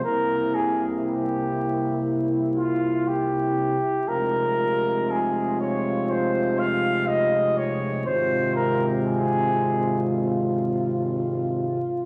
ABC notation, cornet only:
X:1
M:4/4
L:1/8
Q:1/4=60
K:Fm
V:1 name="Cornet"
B A G2 z F G2 | B2 A d c f e d | c B A2 z4 |]